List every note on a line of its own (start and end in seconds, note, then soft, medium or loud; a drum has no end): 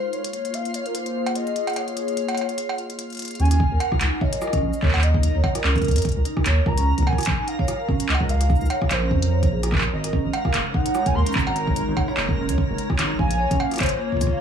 0.00 0.13 G#3 medium
0.00 1.10 D#4 medium
0.00 3.40 F4 medium
0.00 1.05 A#4 medium
0.00 0.10 C5 medium
0.00 3.40 F5 medium
0.13 3.40 A#3 medium
0.13 0.56 C#5 loud
0.13 closed hi-hat soft
0.24 closed hi-hat medium
0.33 3.40 F4 medium
0.33 closed hi-hat medium
0.45 closed hi-hat soft
0.54 0.74 F5 loud
0.54 closed hi-hat medium
0.65 3.40 G#4 medium
0.65 closed hi-hat soft
0.74 0.88 C#5 medium
0.74 closed hi-hat medium
0.86 0.96 A#4 medium
0.86 closed hi-hat soft
0.95 1.35 C5 loud
0.95 closed hi-hat medium
1.06 closed hi-hat soft
1.26 closed hi-hat soft
1.26 cowbell medium
1.35 1.78 D#5 loud
1.35 closed hi-hat medium
1.47 closed hi-hat soft
1.56 closed hi-hat medium
1.67 closed hi-hat soft
1.67 cowbell medium
1.70 closed hi-hat soft
1.73 closed hi-hat soft
1.76 2.99 C#5 loud
1.76 closed hi-hat medium
1.76 cowbell medium
1.88 closed hi-hat soft
1.97 closed hi-hat medium
2.08 closed hi-hat soft
2.17 closed hi-hat medium
2.29 closed hi-hat soft
2.29 cowbell medium
2.35 closed hi-hat medium
2.35 cowbell medium
2.41 cowbell soft
2.49 closed hi-hat soft
2.58 closed hi-hat medium
2.69 cowbell medium
2.78 closed hi-hat soft
2.90 closed hi-hat soft
2.99 closed hi-hat medium
3.10 closed hi-hat soft
3.13 closed hi-hat soft
3.15 closed hi-hat soft
3.17 closed hi-hat soft
3.19 closed hi-hat medium
3.22 closed hi-hat soft
3.25 closed hi-hat soft
3.28 closed hi-hat soft
3.31 closed hi-hat soft
3.35 closed hi-hat soft
3.40 3.65 D#2 loud
3.40 3.46 C#4 loud
3.40 14.41 A#4 medium
3.40 3.82 G#5 loud
3.40 14.41 A#5 medium
3.40 closed hi-hat soft
3.45 closed hi-hat soft
3.51 cross-stick soft
3.51 closed hi-hat loud
3.60 kick loud
3.71 3.77 D#2 medium
3.71 3.77 A#4 medium
3.80 4.23 F#5 loud
3.80 closed hi-hat medium
3.80 cowbell medium
3.92 kick loud
3.92 cross-stick medium
4.01 4.09 C#2 loud
4.01 4.08 D#4 medium
4.01 clap loud
4.01 closed hi-hat medium
4.21 4.28 C#5 loud
4.21 4.84 D#5 loud
4.21 kick loud
4.33 closed hi-hat loud
4.42 4.48 A#4 loud
4.42 cross-stick medium
4.42 cabasa medium
4.47 cross-stick medium
4.53 4.58 C#4 loud
4.53 kick loud
4.53 cross-stick medium
4.53 closed hi-hat medium
4.58 cross-stick soft
4.62 4.70 A#1 loud
4.73 cabasa medium
4.82 4.90 D#2 medium
4.82 4.89 A#4 medium
4.82 5.02 C#5 medium
4.82 kick loud
4.82 clap medium
4.88 clap medium
4.94 5.29 D#2 loud
4.94 clap medium
4.94 cowbell medium
4.98 clap loud
5.03 5.60 D#5 loud
5.03 closed hi-hat medium
5.14 5.20 D#4 medium
5.14 kick loud
5.23 closed hi-hat medium
5.35 5.41 D#2 medium
5.35 5.40 C#5 loud
5.44 kick loud
5.44 cowbell medium
5.55 5.60 A#4 loud
5.55 cross-stick medium
5.55 closed hi-hat medium
5.64 5.98 C#2 medium
5.64 5.71 C#4 loud
5.64 6.21 A#4 medium
5.64 cross-stick soft
5.64 clap loud
5.75 kick loud
5.75 closed hi-hat soft
5.78 kick medium
5.78 closed hi-hat soft
5.82 closed hi-hat soft
5.84 kick medium
5.84 closed hi-hat soft
5.88 closed hi-hat soft
5.91 closed hi-hat soft
5.96 6.02 F#2 loud
5.96 6.01 A#4 medium
5.96 closed hi-hat medium
5.98 closed hi-hat medium
6.02 kick loud
6.02 closed hi-hat medium
6.05 closed hi-hat soft
6.09 closed hi-hat soft
6.12 closed hi-hat soft
6.16 6.22 C#2 medium
6.25 6.32 D#4 medium
6.25 closed hi-hat medium
6.37 kick loud
6.37 cross-stick medium
6.46 6.60 D#2 medium
6.46 6.52 C#5 loud
6.46 clap loud
6.46 closed hi-hat medium
6.66 6.92 C#2 loud
6.66 6.73 A#4 loud
6.66 7.08 A#5 loud
6.66 kick loud
6.72 cross-stick soft
6.78 6.83 C#4 loud
6.78 closed hi-hat medium
6.98 7.04 C#2 medium
6.98 kick medium
6.98 closed hi-hat medium
7.02 kick medium
7.07 7.14 A#4 medium
7.07 7.49 G#5 loud
7.07 kick medium
7.07 cowbell medium
7.13 kick medium
7.18 cross-stick medium
7.18 closed hi-hat soft
7.21 closed hi-hat medium
7.23 closed hi-hat medium
7.25 7.35 A#1 medium
7.25 kick loud
7.25 clap loud
7.25 closed hi-hat medium
7.39 7.44 D#4 medium
7.48 8.08 F5 loud
7.48 closed hi-hat medium
7.59 7.65 C#5 loud
7.59 kick loud
7.68 cross-stick medium
7.68 closed hi-hat medium
7.68 cabasa medium
7.80 7.85 A#4 loud
7.88 7.96 G#1 loud
7.88 7.95 C#4 loud
7.88 kick loud
8.00 closed hi-hat loud
8.00 cabasa medium
8.09 8.17 C#2 medium
8.09 8.31 D#5 loud
8.09 clap loud
8.15 cowbell medium
8.20 8.55 C#2 loud
8.20 8.26 A#4 medium
8.20 kick loud
8.29 8.92 F5 loud
8.29 closed hi-hat medium
8.41 cross-stick soft
8.41 closed hi-hat medium
8.50 8.57 D#4 medium
8.50 kick loud
8.50 cabasa soft
8.55 cabasa soft
8.61 8.67 C#2 medium
8.61 cabasa soft
8.66 cabasa medium
8.70 8.77 C#5 loud
8.70 closed hi-hat soft
8.70 cowbell medium
8.82 kick loud
8.82 cross-stick medium
8.91 9.12 A#1 loud
8.91 8.97 A#4 loud
8.91 9.52 C5 medium
8.91 cross-stick soft
8.91 clap loud
8.91 closed hi-hat medium
9.02 9.07 C#4 loud
9.11 9.44 F2 loud
9.11 kick loud
9.22 closed hi-hat medium
9.31 9.38 C#5 medium
9.43 9.88 A#1 loud
9.43 kick loud
9.43 closed hi-hat medium
9.52 9.59 G#4 medium
9.63 cross-stick medium
9.63 closed hi-hat medium
9.72 9.82 A#4 medium
9.72 kick loud
9.72 cross-stick medium
9.72 clap medium
9.75 cross-stick soft
9.75 clap medium
9.78 cross-stick soft
9.78 clap medium
9.81 cross-stick soft
9.81 clap loud
9.93 10.19 G#1 loud
9.93 13.19 G#3 medium
9.93 10.31 D#5 medium
10.01 13.73 D#4 medium
10.01 10.09 A#4 loud
10.01 cross-stick soft
10.01 closed hi-hat medium
10.13 10.20 C#4 loud
10.13 kick loud
10.24 10.31 G#1 medium
10.33 14.41 C#5 medium
10.33 10.76 F5 medium
10.33 closed hi-hat soft
10.33 cowbell medium
10.45 10.50 A#4 medium
10.45 kick loud
10.45 cross-stick medium
10.54 10.62 F#1 loud
10.54 clap loud
10.54 closed hi-hat medium
10.63 13.98 A#4 medium
10.74 10.81 D#4 medium
10.74 11.07 F#5 loud
10.74 kick loud
10.86 closed hi-hat medium
10.95 11.01 C#5 loud
10.95 cross-stick medium
10.95 cabasa medium
11.06 11.14 G#5 medium
11.06 kick loud
11.06 closed hi-hat soft
11.15 11.23 D#2 loud
11.15 11.22 A#4 loud
11.15 11.34 C6 loud
11.26 11.32 C#4 loud
11.26 closed hi-hat medium
11.26 cabasa soft
11.32 11.43 G#1 medium
11.32 11.73 A#5 loud
11.32 kick loud
11.32 clap loud
11.32 cabasa soft
11.39 cabasa medium
11.47 11.82 G#1 loud
11.47 cowbell medium
11.56 11.63 A#4 medium
11.56 closed hi-hat medium
11.67 kick loud
11.76 closed hi-hat medium
11.76 cabasa medium
11.88 11.94 G#1 medium
11.88 11.93 D#4 medium
11.97 kick loud
11.97 cowbell loud
12.08 12.13 C#5 loud
12.08 cross-stick medium
12.17 12.50 F#1 loud
12.17 cross-stick soft
12.17 clap loud
12.29 12.34 A#4 loud
12.29 kick loud
12.38 12.44 C#4 loud
12.49 12.55 C#2 loud
12.49 closed hi-hat medium
12.58 kick loud
12.69 12.76 F#1 medium
12.69 12.75 A#4 medium
12.78 closed hi-hat medium
12.90 kick loud
12.90 cross-stick medium
12.99 13.13 G#1 medium
12.99 13.06 D#4 medium
12.99 cross-stick medium
12.99 clap loud
12.99 closed hi-hat medium
13.19 13.45 A#1 loud
13.19 14.41 A#3 medium
13.19 13.26 F5 loud
13.19 13.57 G#5 loud
13.19 kick loud
13.31 closed hi-hat medium
13.40 13.46 C#5 loud
13.48 13.57 A#1 medium
13.48 13.56 C#4 loud
13.48 14.41 F4 medium
13.48 kick loud
13.48 closed hi-hat medium
13.60 13.79 F5 loud
13.60 cowbell medium
13.71 cross-stick soft
13.71 closed hi-hat soft
13.74 cross-stick soft
13.74 closed hi-hat soft
13.76 cross-stick medium
13.76 closed hi-hat medium
13.78 14.02 C5 medium
13.78 kick loud
13.78 clap loud
13.78 closed hi-hat medium
13.80 13.88 G#1 loud
13.80 13.87 C#5 medium
13.80 closed hi-hat medium
13.83 closed hi-hat medium
13.86 closed hi-hat medium
13.89 closed hi-hat medium
13.94 14.41 C6 medium
14.01 14.41 C#5 loud
14.12 14.18 F4 medium
14.12 kick soft
14.17 kick medium
14.21 kick medium
14.21 closed hi-hat medium
14.21 cabasa medium
14.27 kick medium
14.33 14.38 F5 loud